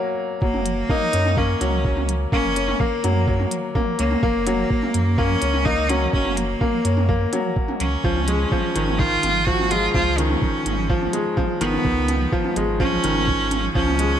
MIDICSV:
0, 0, Header, 1, 5, 480
1, 0, Start_track
1, 0, Key_signature, 6, "major"
1, 0, Tempo, 476190
1, 424, Time_signature, 4, 2, 24, 8
1, 14310, End_track
2, 0, Start_track
2, 0, Title_t, "Cello"
2, 0, Program_c, 0, 42
2, 423, Note_on_c, 0, 58, 97
2, 906, Note_on_c, 0, 63, 115
2, 921, Note_off_c, 0, 58, 0
2, 1385, Note_on_c, 0, 61, 97
2, 1400, Note_off_c, 0, 63, 0
2, 2105, Note_off_c, 0, 61, 0
2, 2346, Note_on_c, 0, 61, 115
2, 2825, Note_on_c, 0, 58, 100
2, 2840, Note_off_c, 0, 61, 0
2, 3545, Note_off_c, 0, 58, 0
2, 4024, Note_on_c, 0, 58, 101
2, 5222, Note_on_c, 0, 61, 112
2, 5238, Note_off_c, 0, 58, 0
2, 5694, Note_on_c, 0, 63, 117
2, 5709, Note_off_c, 0, 61, 0
2, 5938, Note_on_c, 0, 61, 109
2, 5953, Note_off_c, 0, 63, 0
2, 6173, Note_off_c, 0, 61, 0
2, 6179, Note_on_c, 0, 61, 104
2, 6419, Note_on_c, 0, 58, 96
2, 6434, Note_off_c, 0, 61, 0
2, 7381, Note_off_c, 0, 58, 0
2, 7862, Note_on_c, 0, 61, 94
2, 9060, Note_on_c, 0, 65, 107
2, 9075, Note_off_c, 0, 61, 0
2, 9543, Note_on_c, 0, 66, 110
2, 9558, Note_off_c, 0, 65, 0
2, 9783, Note_on_c, 0, 65, 107
2, 9798, Note_off_c, 0, 66, 0
2, 10017, Note_off_c, 0, 65, 0
2, 10023, Note_on_c, 0, 65, 102
2, 10261, Note_on_c, 0, 61, 95
2, 10276, Note_off_c, 0, 65, 0
2, 11222, Note_off_c, 0, 61, 0
2, 11701, Note_on_c, 0, 59, 123
2, 12622, Note_off_c, 0, 59, 0
2, 12901, Note_on_c, 0, 61, 119
2, 13822, Note_off_c, 0, 61, 0
2, 13862, Note_on_c, 0, 61, 123
2, 14310, Note_off_c, 0, 61, 0
2, 14310, End_track
3, 0, Start_track
3, 0, Title_t, "Upright piano"
3, 0, Program_c, 1, 0
3, 0, Control_c, 1, 64, 127
3, 0, Note_on_c, 1, 54, 72
3, 0, Note_on_c, 1, 58, 103
3, 0, Note_on_c, 1, 61, 72
3, 173, Note_off_c, 1, 54, 0
3, 423, Note_on_c, 1, 54, 82
3, 436, Control_c, 1, 64, 0
3, 437, Note_off_c, 1, 58, 0
3, 438, Note_off_c, 1, 61, 0
3, 609, Control_c, 1, 64, 127
3, 651, Note_off_c, 1, 54, 0
3, 903, Note_on_c, 1, 58, 93
3, 1040, Note_off_c, 1, 58, 0
3, 1141, Note_on_c, 1, 61, 71
3, 1279, Note_off_c, 1, 61, 0
3, 1384, Note_on_c, 1, 58, 96
3, 1612, Note_off_c, 1, 58, 0
3, 1623, Note_on_c, 1, 54, 94
3, 1850, Note_off_c, 1, 54, 0
3, 1865, Note_on_c, 1, 54, 72
3, 2093, Note_off_c, 1, 54, 0
3, 2347, Note_on_c, 1, 58, 96
3, 2482, Note_off_c, 1, 58, 0
3, 2585, Note_on_c, 1, 61, 70
3, 2721, Note_off_c, 1, 61, 0
3, 2825, Note_on_c, 1, 58, 95
3, 3052, Note_off_c, 1, 58, 0
3, 3065, Note_on_c, 1, 54, 90
3, 3289, Note_off_c, 1, 54, 0
3, 3304, Note_on_c, 1, 54, 87
3, 3532, Note_off_c, 1, 54, 0
3, 3781, Note_on_c, 1, 58, 98
3, 3919, Note_off_c, 1, 58, 0
3, 4023, Note_on_c, 1, 61, 74
3, 4160, Note_off_c, 1, 61, 0
3, 4263, Note_on_c, 1, 58, 100
3, 4492, Note_off_c, 1, 58, 0
3, 4504, Note_on_c, 1, 54, 104
3, 4728, Note_off_c, 1, 54, 0
3, 4743, Note_on_c, 1, 54, 71
3, 4971, Note_off_c, 1, 54, 0
3, 5223, Note_on_c, 1, 58, 105
3, 5360, Note_off_c, 1, 58, 0
3, 5462, Note_on_c, 1, 61, 71
3, 5600, Note_off_c, 1, 61, 0
3, 5703, Note_on_c, 1, 58, 99
3, 5932, Note_off_c, 1, 58, 0
3, 5942, Note_on_c, 1, 54, 105
3, 6164, Note_off_c, 1, 54, 0
3, 6179, Note_on_c, 1, 54, 81
3, 6410, Note_off_c, 1, 54, 0
3, 6662, Note_on_c, 1, 58, 94
3, 6800, Note_off_c, 1, 58, 0
3, 6904, Note_on_c, 1, 61, 69
3, 7041, Note_off_c, 1, 61, 0
3, 7144, Note_on_c, 1, 58, 97
3, 7372, Note_off_c, 1, 58, 0
3, 7386, Note_on_c, 1, 54, 98
3, 7611, Note_off_c, 1, 54, 0
3, 7626, Note_on_c, 1, 54, 66
3, 7853, Note_off_c, 1, 54, 0
3, 8108, Note_on_c, 1, 53, 99
3, 8119, Control_c, 1, 64, 0
3, 8243, Note_off_c, 1, 53, 0
3, 8296, Control_c, 1, 64, 127
3, 8347, Note_on_c, 1, 56, 75
3, 8482, Note_off_c, 1, 56, 0
3, 8587, Note_on_c, 1, 53, 98
3, 8814, Note_off_c, 1, 53, 0
3, 8826, Note_on_c, 1, 51, 91
3, 9053, Note_off_c, 1, 51, 0
3, 9068, Note_on_c, 1, 51, 88
3, 9294, Note_off_c, 1, 51, 0
3, 9545, Note_on_c, 1, 53, 92
3, 9681, Note_off_c, 1, 53, 0
3, 9788, Note_on_c, 1, 56, 78
3, 9923, Note_off_c, 1, 56, 0
3, 10028, Note_on_c, 1, 53, 102
3, 10254, Note_off_c, 1, 53, 0
3, 10266, Note_on_c, 1, 51, 100
3, 10490, Note_off_c, 1, 51, 0
3, 10505, Note_on_c, 1, 51, 77
3, 10733, Note_off_c, 1, 51, 0
3, 10985, Note_on_c, 1, 53, 101
3, 11121, Note_off_c, 1, 53, 0
3, 11221, Note_on_c, 1, 56, 73
3, 11360, Note_off_c, 1, 56, 0
3, 11460, Note_on_c, 1, 53, 100
3, 11690, Note_off_c, 1, 53, 0
3, 11701, Note_on_c, 1, 51, 110
3, 11928, Note_off_c, 1, 51, 0
3, 11944, Note_on_c, 1, 51, 89
3, 12172, Note_off_c, 1, 51, 0
3, 12423, Note_on_c, 1, 53, 101
3, 12560, Note_off_c, 1, 53, 0
3, 12668, Note_on_c, 1, 56, 77
3, 12803, Note_off_c, 1, 56, 0
3, 12902, Note_on_c, 1, 53, 107
3, 13131, Note_off_c, 1, 53, 0
3, 13144, Note_on_c, 1, 51, 105
3, 13371, Note_off_c, 1, 51, 0
3, 13386, Note_on_c, 1, 51, 73
3, 13613, Note_off_c, 1, 51, 0
3, 13864, Note_on_c, 1, 53, 100
3, 14001, Note_off_c, 1, 53, 0
3, 14106, Note_on_c, 1, 56, 73
3, 14242, Note_off_c, 1, 56, 0
3, 14310, End_track
4, 0, Start_track
4, 0, Title_t, "Sub bass"
4, 0, Program_c, 2, 38
4, 422, Note_on_c, 2, 30, 99
4, 843, Note_off_c, 2, 30, 0
4, 1144, Note_on_c, 2, 42, 101
4, 1564, Note_off_c, 2, 42, 0
4, 1622, Note_on_c, 2, 37, 85
4, 2283, Note_off_c, 2, 37, 0
4, 2342, Note_on_c, 2, 30, 101
4, 2763, Note_off_c, 2, 30, 0
4, 3065, Note_on_c, 2, 42, 99
4, 3485, Note_off_c, 2, 42, 0
4, 4026, Note_on_c, 2, 37, 85
4, 4190, Note_off_c, 2, 37, 0
4, 4262, Note_on_c, 2, 30, 102
4, 4683, Note_off_c, 2, 30, 0
4, 4984, Note_on_c, 2, 42, 100
4, 5404, Note_off_c, 2, 42, 0
4, 5464, Note_on_c, 2, 37, 85
4, 6124, Note_off_c, 2, 37, 0
4, 6183, Note_on_c, 2, 30, 104
4, 6603, Note_off_c, 2, 30, 0
4, 6902, Note_on_c, 2, 42, 104
4, 7323, Note_off_c, 2, 42, 0
4, 7866, Note_on_c, 2, 37, 80
4, 8030, Note_off_c, 2, 37, 0
4, 8105, Note_on_c, 2, 37, 94
4, 8524, Note_off_c, 2, 37, 0
4, 8827, Note_on_c, 2, 32, 104
4, 9246, Note_off_c, 2, 32, 0
4, 9309, Note_on_c, 2, 32, 83
4, 9966, Note_off_c, 2, 32, 0
4, 10025, Note_on_c, 2, 37, 107
4, 10444, Note_off_c, 2, 37, 0
4, 10742, Note_on_c, 2, 32, 97
4, 11163, Note_off_c, 2, 32, 0
4, 11702, Note_on_c, 2, 32, 82
4, 11868, Note_off_c, 2, 32, 0
4, 11942, Note_on_c, 2, 37, 103
4, 12363, Note_off_c, 2, 37, 0
4, 12663, Note_on_c, 2, 32, 97
4, 13084, Note_off_c, 2, 32, 0
4, 13145, Note_on_c, 2, 32, 81
4, 13804, Note_off_c, 2, 32, 0
4, 13862, Note_on_c, 2, 37, 103
4, 14283, Note_off_c, 2, 37, 0
4, 14310, End_track
5, 0, Start_track
5, 0, Title_t, "Drums"
5, 421, Note_on_c, 9, 36, 105
5, 522, Note_off_c, 9, 36, 0
5, 542, Note_on_c, 9, 45, 69
5, 643, Note_off_c, 9, 45, 0
5, 661, Note_on_c, 9, 42, 64
5, 762, Note_off_c, 9, 42, 0
5, 901, Note_on_c, 9, 36, 107
5, 902, Note_on_c, 9, 45, 69
5, 1002, Note_off_c, 9, 36, 0
5, 1003, Note_off_c, 9, 45, 0
5, 1141, Note_on_c, 9, 42, 65
5, 1242, Note_off_c, 9, 42, 0
5, 1264, Note_on_c, 9, 45, 74
5, 1365, Note_off_c, 9, 45, 0
5, 1381, Note_on_c, 9, 36, 104
5, 1482, Note_off_c, 9, 36, 0
5, 1624, Note_on_c, 9, 42, 60
5, 1624, Note_on_c, 9, 45, 67
5, 1724, Note_off_c, 9, 42, 0
5, 1724, Note_off_c, 9, 45, 0
5, 1861, Note_on_c, 9, 36, 102
5, 1962, Note_off_c, 9, 36, 0
5, 1983, Note_on_c, 9, 45, 66
5, 2084, Note_off_c, 9, 45, 0
5, 2105, Note_on_c, 9, 42, 61
5, 2205, Note_off_c, 9, 42, 0
5, 2342, Note_on_c, 9, 36, 117
5, 2343, Note_on_c, 9, 45, 62
5, 2442, Note_off_c, 9, 36, 0
5, 2444, Note_off_c, 9, 45, 0
5, 2583, Note_on_c, 9, 42, 67
5, 2684, Note_off_c, 9, 42, 0
5, 2703, Note_on_c, 9, 45, 66
5, 2804, Note_off_c, 9, 45, 0
5, 2822, Note_on_c, 9, 36, 107
5, 2923, Note_off_c, 9, 36, 0
5, 3064, Note_on_c, 9, 42, 65
5, 3064, Note_on_c, 9, 45, 72
5, 3165, Note_off_c, 9, 42, 0
5, 3165, Note_off_c, 9, 45, 0
5, 3302, Note_on_c, 9, 36, 105
5, 3403, Note_off_c, 9, 36, 0
5, 3423, Note_on_c, 9, 45, 62
5, 3524, Note_off_c, 9, 45, 0
5, 3542, Note_on_c, 9, 42, 64
5, 3643, Note_off_c, 9, 42, 0
5, 3782, Note_on_c, 9, 36, 105
5, 3782, Note_on_c, 9, 45, 70
5, 3882, Note_off_c, 9, 45, 0
5, 3883, Note_off_c, 9, 36, 0
5, 4021, Note_on_c, 9, 42, 65
5, 4121, Note_off_c, 9, 42, 0
5, 4142, Note_on_c, 9, 45, 67
5, 4243, Note_off_c, 9, 45, 0
5, 4262, Note_on_c, 9, 36, 113
5, 4363, Note_off_c, 9, 36, 0
5, 4501, Note_on_c, 9, 42, 68
5, 4501, Note_on_c, 9, 45, 67
5, 4602, Note_off_c, 9, 42, 0
5, 4602, Note_off_c, 9, 45, 0
5, 4742, Note_on_c, 9, 36, 111
5, 4843, Note_off_c, 9, 36, 0
5, 4863, Note_on_c, 9, 45, 64
5, 4964, Note_off_c, 9, 45, 0
5, 4982, Note_on_c, 9, 42, 66
5, 5083, Note_off_c, 9, 42, 0
5, 5221, Note_on_c, 9, 45, 69
5, 5222, Note_on_c, 9, 36, 108
5, 5322, Note_off_c, 9, 45, 0
5, 5323, Note_off_c, 9, 36, 0
5, 5460, Note_on_c, 9, 42, 69
5, 5561, Note_off_c, 9, 42, 0
5, 5580, Note_on_c, 9, 45, 66
5, 5681, Note_off_c, 9, 45, 0
5, 5702, Note_on_c, 9, 36, 110
5, 5803, Note_off_c, 9, 36, 0
5, 5942, Note_on_c, 9, 42, 64
5, 5942, Note_on_c, 9, 45, 62
5, 6043, Note_off_c, 9, 42, 0
5, 6043, Note_off_c, 9, 45, 0
5, 6182, Note_on_c, 9, 36, 112
5, 6283, Note_off_c, 9, 36, 0
5, 6301, Note_on_c, 9, 45, 67
5, 6402, Note_off_c, 9, 45, 0
5, 6423, Note_on_c, 9, 42, 63
5, 6524, Note_off_c, 9, 42, 0
5, 6663, Note_on_c, 9, 36, 112
5, 6665, Note_on_c, 9, 45, 63
5, 6764, Note_off_c, 9, 36, 0
5, 6766, Note_off_c, 9, 45, 0
5, 6904, Note_on_c, 9, 42, 67
5, 7005, Note_off_c, 9, 42, 0
5, 7025, Note_on_c, 9, 45, 68
5, 7125, Note_off_c, 9, 45, 0
5, 7144, Note_on_c, 9, 36, 110
5, 7245, Note_off_c, 9, 36, 0
5, 7386, Note_on_c, 9, 42, 66
5, 7386, Note_on_c, 9, 45, 66
5, 7487, Note_off_c, 9, 42, 0
5, 7487, Note_off_c, 9, 45, 0
5, 7625, Note_on_c, 9, 36, 105
5, 7725, Note_off_c, 9, 36, 0
5, 7744, Note_on_c, 9, 45, 67
5, 7845, Note_off_c, 9, 45, 0
5, 7864, Note_on_c, 9, 42, 65
5, 7965, Note_off_c, 9, 42, 0
5, 8105, Note_on_c, 9, 36, 106
5, 8206, Note_off_c, 9, 36, 0
5, 8223, Note_on_c, 9, 45, 68
5, 8323, Note_off_c, 9, 45, 0
5, 8343, Note_on_c, 9, 42, 62
5, 8444, Note_off_c, 9, 42, 0
5, 8584, Note_on_c, 9, 45, 64
5, 8585, Note_on_c, 9, 36, 107
5, 8685, Note_off_c, 9, 45, 0
5, 8686, Note_off_c, 9, 36, 0
5, 8826, Note_on_c, 9, 42, 66
5, 8927, Note_off_c, 9, 42, 0
5, 8947, Note_on_c, 9, 45, 68
5, 9048, Note_off_c, 9, 45, 0
5, 9065, Note_on_c, 9, 36, 107
5, 9166, Note_off_c, 9, 36, 0
5, 9306, Note_on_c, 9, 42, 63
5, 9306, Note_on_c, 9, 45, 62
5, 9407, Note_off_c, 9, 42, 0
5, 9407, Note_off_c, 9, 45, 0
5, 9544, Note_on_c, 9, 36, 100
5, 9645, Note_off_c, 9, 36, 0
5, 9667, Note_on_c, 9, 45, 61
5, 9768, Note_off_c, 9, 45, 0
5, 9786, Note_on_c, 9, 42, 60
5, 9887, Note_off_c, 9, 42, 0
5, 10024, Note_on_c, 9, 36, 105
5, 10026, Note_on_c, 9, 45, 64
5, 10125, Note_off_c, 9, 36, 0
5, 10127, Note_off_c, 9, 45, 0
5, 10265, Note_on_c, 9, 42, 61
5, 10366, Note_off_c, 9, 42, 0
5, 10384, Note_on_c, 9, 45, 65
5, 10484, Note_off_c, 9, 45, 0
5, 10504, Note_on_c, 9, 36, 104
5, 10604, Note_off_c, 9, 36, 0
5, 10745, Note_on_c, 9, 42, 60
5, 10745, Note_on_c, 9, 45, 67
5, 10846, Note_off_c, 9, 42, 0
5, 10846, Note_off_c, 9, 45, 0
5, 10983, Note_on_c, 9, 36, 103
5, 11084, Note_off_c, 9, 36, 0
5, 11103, Note_on_c, 9, 45, 58
5, 11204, Note_off_c, 9, 45, 0
5, 11222, Note_on_c, 9, 42, 62
5, 11323, Note_off_c, 9, 42, 0
5, 11463, Note_on_c, 9, 36, 98
5, 11463, Note_on_c, 9, 45, 64
5, 11564, Note_off_c, 9, 36, 0
5, 11564, Note_off_c, 9, 45, 0
5, 11703, Note_on_c, 9, 42, 57
5, 11804, Note_off_c, 9, 42, 0
5, 11824, Note_on_c, 9, 45, 60
5, 11925, Note_off_c, 9, 45, 0
5, 11943, Note_on_c, 9, 36, 106
5, 12044, Note_off_c, 9, 36, 0
5, 12181, Note_on_c, 9, 42, 60
5, 12181, Note_on_c, 9, 45, 65
5, 12282, Note_off_c, 9, 42, 0
5, 12282, Note_off_c, 9, 45, 0
5, 12422, Note_on_c, 9, 36, 100
5, 12523, Note_off_c, 9, 36, 0
5, 12542, Note_on_c, 9, 45, 68
5, 12643, Note_off_c, 9, 45, 0
5, 12664, Note_on_c, 9, 42, 62
5, 12765, Note_off_c, 9, 42, 0
5, 12902, Note_on_c, 9, 36, 92
5, 12903, Note_on_c, 9, 45, 64
5, 13002, Note_off_c, 9, 36, 0
5, 13003, Note_off_c, 9, 45, 0
5, 13142, Note_on_c, 9, 42, 62
5, 13242, Note_off_c, 9, 42, 0
5, 13262, Note_on_c, 9, 45, 64
5, 13363, Note_off_c, 9, 45, 0
5, 13382, Note_on_c, 9, 36, 92
5, 13483, Note_off_c, 9, 36, 0
5, 13621, Note_on_c, 9, 42, 62
5, 13621, Note_on_c, 9, 45, 62
5, 13721, Note_off_c, 9, 42, 0
5, 13721, Note_off_c, 9, 45, 0
5, 13862, Note_on_c, 9, 36, 108
5, 13963, Note_off_c, 9, 36, 0
5, 13981, Note_on_c, 9, 45, 74
5, 14081, Note_off_c, 9, 45, 0
5, 14101, Note_on_c, 9, 42, 62
5, 14202, Note_off_c, 9, 42, 0
5, 14310, End_track
0, 0, End_of_file